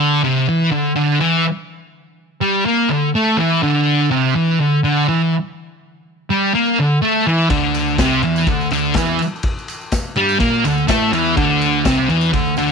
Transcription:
Already playing: D3
0.24 C3
0.49 E3
0.71 D3
0.96 D3
1.20 E3
2.41 G3
2.66 A#3
2.89 D3
3.15 A3
3.37 E3
3.63 D3
4.11 C3
4.36 E3
4.60 D3
4.84 D3
5.09 E3
6.30 G3
6.54 A#3
6.79 D3
7.02 A3
7.27 E3
7.50 D2 D3, kick, ride
7.74 ride, tambourine
7.88 tambourine
7.98 C2 C3, kick, snare, ride, tambourine
8.23 E2 E3, ride, tambourine
8.36 tambourine
8.46 D2 D3, kick, ride, tambourine
8.61 tambourine
8.71 D2 D3, ride, tambourine
8.85 tambourine
8.94 E2 E3, kick, snare, ride, tambourine
9.11 tambourine
9.19 ride, tambourine
9.36 tambourine
9.43 kick, ride
9.59 tambourine
9.68 ride, tambourine
9.81 tambourine
9.92 kick, snare, ride, tambourine
10.16 G2 G3, ride, tambourine
10.29 tambourine
10.40 A#2 A#3, kick, ride, tambourine
10.53 tambourine
10.64 D2 D3, ride, tambourine
10.78 tambourine
10.88 A2 A3, kick, snare, ride, tambourine
11.02 tambourine
11.12 E2 E3, ride, tambourine
11.26 tambourine
11.37 D2 D3, kick, ride
11.51 tambourine
11.61 ride, tambourine
11.73 tambourine
11.85 C2 C3, kick, snare, ride, tambourine
12.09 E2 E3, ride, tambourine
12.21 tambourine
12.33 D2 D3, kick, ride, tambourine
12.46 tambourine
12.57 D2 D3, ride, tambourine
12.68 tambourine

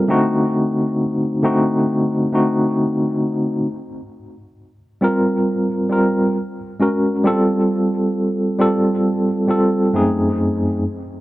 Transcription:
Already playing: G3 C4 F4 A4 A#4
0.08 D3 A3 C4 D#4 F#4
1.43 D3 A3 C4 D#4 F#4
2.32 D3 A3 C4 D#4 F#4
5.01 G3 C4 F4 A#4
5.89 G3 C4 F4 A#4
6.80 G#3 C#4 F#4 A#4
7.24 G3 C4 F4 A4
8.59 G3 C4 F4 A4
9.48 G3 C4 F4 A4
9.93 F#2 A3 C4 D#4 G#4

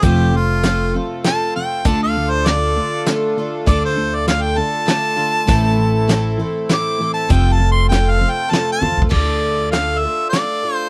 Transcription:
0.02 F1 F2 C3 F3 A3 C4 F4 G4 A4, kick, closed hi-hat
0.06 A4
0.33 F2 C3 F4
0.63 F2 C3 A3 C4 F4 A4, snare, closed hi-hat
0.94 F2 C3 C4 F4 A4
1.24 F2 C3 A3 C4 F4 A4 A5, snare, closed hi-hat
1.56 F2 C3 G5
1.84 D2 D3 A3 D4 F4 A4 A5, kick, closed hi-hat
2.03 F5
2.17 D3 A3
2.31 C5
2.46 D3 A3 D4 F4 A4 D5, snare, closed hi-hat
2.77 D3 A3 D4 F4 A4
3.06 D3 A3 D4 F4 A4, snare, closed hi-hat
3.37 D3 A3 D4 F4 A4
3.66 D2 D3 A3 D4 F4 A4 D5, kick, closed hi-hat
3.85 C5
3.97 D3 A3
4.15 D5
4.26 D3 A3 D4 F4 A4 F5, snare, closed hi-hat
4.42 G5
4.56 D3 A3 D4 F4 A4 A5
4.86 D3 A3 D4 F4 A4, snare, closed hi-hat
5.16 D3 A3 D4 F4 A4
5.46 A1 A2 E3 A3 C4 E4 A4, kick, closed hi-hat
5.50 A3 C4
5.78 E3
6.08 A2 E3 A3 C4 E4 A4, snare, closed hi-hat
6.38 A2 E3 A3 C4 E4 A4
6.69 A2 E3 A3 C4 E4 A4, snare, closed hi-hat
6.74 D6
6.99 A2 E3 C4 E4 A4
7.03 A3
7.14 A5
7.29 F1 F2 C3 F3 A3 C4 F4 A4 G5, kick, closed hi-hat
7.52 A5
7.60 F2 C3
7.72 C6
7.89 F2 C3 A3 C4 F4 A4 G5, snare, closed hi-hat
8.11 F5
8.18 F2 C3 C4 F4 A4
8.31 G5
8.48 F2 C3 A3 C4 F4 A4 A5
8.53 snare, closed hi-hat
8.72 A5
8.80 E2 F2 C3 C4 F4 A4, high tom
8.97 D2
9.02 kick
9.09 D2 D3 A3 D4 F4 A4 D5, kick, crash
9.14 A3 D4 F4 A4
9.72 A3 D4 F4 A4 F5, snare, closed hi-hat
9.99 A4 E5
10.04 D4 F4
10.30 A3 D4 F4 D5, snare, closed hi-hat
10.35 A4
10.63 D4 F4 A4
10.75 C5

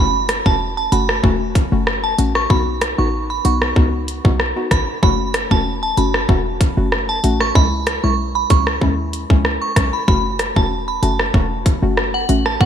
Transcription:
Already playing: F#1 A3 C#4 F#4 B5
0.29 cross-stick, closed hi-hat
0.46 E1 A3 C#4 F#4 A5, kick
0.77 A5
0.92 F#1 A3 C#4 F#4 B5, closed hi-hat
1.09 cross-stick
1.24 E1 A3 C#4 F#4, kick
1.55 kick, closed hi-hat
1.72 F#1 A3 C#4 F#4
1.87 cross-stick
2.04 A5
2.18 A1 A3 C#4 F#4, closed hi-hat
2.35 C#6, cross-stick
2.50 B1 B3 D#4 F#4 B5, kick
2.81 cross-stick, closed hi-hat
2.98 A1 B3 D#4 F#4 C#6
3.30 B5
3.45 B1 B3 D#4 F#4 C#6, closed hi-hat
3.62 cross-stick
3.76 C#2 B3 D#4 F#4, kick
4.08 closed hi-hat
4.24 B1 B3 D#4 F#4, kick
4.40 cross-stick
4.56 B3 D#4 F#4
4.71 A1 B5, kick, cross-stick, closed hi-hat
5.02 F#1 A3 C#4 F#4 B5, kick
5.34 cross-stick, closed hi-hat
5.51 E1 A3 C#4 F#4 A5, kick
5.83 A5
5.97 F#1 A3 C#4 F#4 B5, closed hi-hat
6.14 cross-stick
6.29 E1 A3 C#4 F#4, kick
6.61 kick, closed hi-hat
6.77 F#1 A3 C#4 F#4
6.92 cross-stick
7.09 A5
7.24 A1 A3 C#4 F#4, closed hi-hat
7.40 C#6, cross-stick
7.55 C#2 G#3 C#4 E4 B5, kick
7.87 cross-stick, closed hi-hat
8.03 B1 G#3 C#4 E4 C#6
8.35 B5
8.50 C#2 G#3 C#4 E4 C#6, kick, closed hi-hat
8.67 cross-stick
8.81 D#2 G#3 C#4 E4, kick
9.13 closed hi-hat
9.30 C#2 G#3 C#4 E4, kick
9.45 cross-stick
9.62 C#6
9.76 B1 G#3 C#4 E4, kick, cross-stick, closed hi-hat
9.93 B5
10.08 F#1 A3 C#4 F#4 B5, kick
10.39 cross-stick, closed hi-hat
10.56 E1 A3 C#4 F#4 A5, kick
10.88 B5
11.02 F#1 A3 C#4 F#4 A5, closed hi-hat
11.19 cross-stick
11.34 E1 A3 C#4 F#4, kick
11.66 kick, closed hi-hat
11.82 F#1 A3 C#4 F#4
11.97 cross-stick
12.14 F#5
12.29 A1 A3 C#4 F#4, closed hi-hat
12.46 A5, cross-stick
12.60 B1 B3 D#4 F#4 F#5, kick

